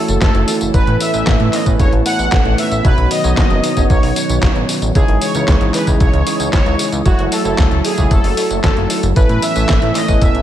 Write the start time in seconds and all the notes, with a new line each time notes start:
Already playing: E3 A3 C#4 E4 F#4 A4 C#5
0.08 F#1, closed hi-hat, tambourine
0.22 F#1 A4, kick, snare, clap, closed hi-hat, tambourine
0.35 F#1 A3 E4 F#4 C#5, closed hi-hat
0.48 open hi-hat, tambourine
0.61 F#1, closed hi-hat, tambourine
0.74 A1 A2 A3 B3 C#4 E4 B4, kick, closed hi-hat, tambourine
0.87 A2, closed hi-hat
1.01 E5, open hi-hat, tambourine
1.14 A1 A2 A3 C#4 E4 B4, closed hi-hat, tambourine
1.27 A1, kick, snare, clap, closed hi-hat, tambourine
1.40 A2, closed hi-hat
1.53 D#5, clap, open hi-hat, tambourine
1.66 A1 A2 A3 C#4 E4 B4, kick, closed hi-hat, tambourine
1.79 E1 C#5, kick, closed hi-hat, tambourine
1.93 A1, closed hi-hat
2.06 A2 A3 C#4 E4 B4 F#5, open hi-hat, tambourine
2.19 A1, closed hi-hat, tambourine
2.32 A1, kick, snare, clap, closed hi-hat, tambourine
2.45 A1 A2 A3 C#4 E4 B4, closed hi-hat
2.58 E5, open hi-hat, tambourine
2.72 A1, closed hi-hat, tambourine
2.85 B1 B2 D#3 F#3 B3 D#4 F#4 B4 C#5, kick, closed hi-hat, tambourine
2.98 B1, closed hi-hat
3.11 D#5, open hi-hat, tambourine
3.24 B1 B2 B3 D#4 F#4 C#5, closed hi-hat, tambourine
3.37 F#1, kick, snare, clap, closed hi-hat, tambourine
3.50 F#1, closed hi-hat
3.64 open hi-hat, tambourine
3.77 F#1 B2 B3 D#4 F#4 C#5, kick, closed hi-hat, tambourine
3.90 B1 C#5, kick, closed hi-hat, tambourine
4.03 B1, open hi-hat
4.16 B2 B3 D#4 F#4 C#5, open hi-hat, tambourine
4.29 B1, closed hi-hat, tambourine
4.43 A1, kick, snare, clap, closed hi-hat, tambourine
4.56 A1 B2 B3 D#4 F#4 C#5, closed hi-hat
4.69 open hi-hat, tambourine
4.82 A1, closed hi-hat, tambourine
4.95 C#2 C#3 E3 G#3 D#4 E4 G#4 C#5 D#5, kick, closed hi-hat, tambourine
5.08 G#1, closed hi-hat
5.21 C#5, open hi-hat, tambourine
5.35 C#2 C#3 G#3 D#4 E4 C#5, closed hi-hat, tambourine
5.48 C#2, kick, snare, clap, closed hi-hat, tambourine
5.61 G#1, closed hi-hat
5.74 B4, clap, open hi-hat, tambourine
5.87 C#2 C#3 G#3 D#4 E4 C#5, kick, closed hi-hat, tambourine
6.00 B1 C#5, kick, closed hi-hat, tambourine
6.13 C#2, closed hi-hat
6.27 C#3 G#3 D#4 E4 C#5, open hi-hat, tambourine
6.40 C#2, closed hi-hat, tambourine
6.53 C#2 C#5, kick, snare, clap, closed hi-hat, tambourine
6.66 C#2 C#3 G#3 D#4 E4 C#5, closed hi-hat
6.79 open hi-hat, tambourine
6.92 C#2, closed hi-hat, tambourine
7.05 F#1 F#3 A3 E4 F#4 A4 C#5, kick, closed hi-hat, tambourine
7.19 F#1, closed hi-hat
7.32 A4, open hi-hat, tambourine
7.45 F#1 A3 E4 F#4 C#5, closed hi-hat, tambourine
7.58 C#2, kick, snare, clap, closed hi-hat, tambourine
7.71 C#2, closed hi-hat
7.85 G#4, open hi-hat, tambourine
7.98 C#2 A3 E4 F#4 C#5, kick, closed hi-hat, tambourine
8.11 F#1 A4, kick, closed hi-hat, tambourine
8.24 F#1, open hi-hat
8.37 A3 E4 F#4 C#5, open hi-hat, tambourine
8.51 F#1, closed hi-hat, tambourine
8.64 F#1 A4, kick, snare, clap, closed hi-hat, tambourine
8.77 F#1 A3 E4 F#4 C#5, closed hi-hat
8.90 open hi-hat, tambourine
9.03 F#1, closed hi-hat, tambourine
9.16 A1 A2 E3 A3 B3 C#4 E4 B4, kick, closed hi-hat, tambourine
9.29 A2, closed hi-hat
9.42 E5, open hi-hat, tambourine
9.56 A1 A2 A3 C#4 E4 B4, closed hi-hat, tambourine
9.69 A1, kick, snare, clap, closed hi-hat, tambourine
9.82 A2, closed hi-hat
9.95 D#5, clap, open hi-hat, tambourine
10.08 A1 A2 A3 C#4 E4 B4, kick, closed hi-hat, tambourine
10.21 E1 E5, kick, closed hi-hat, tambourine
10.35 A1, closed hi-hat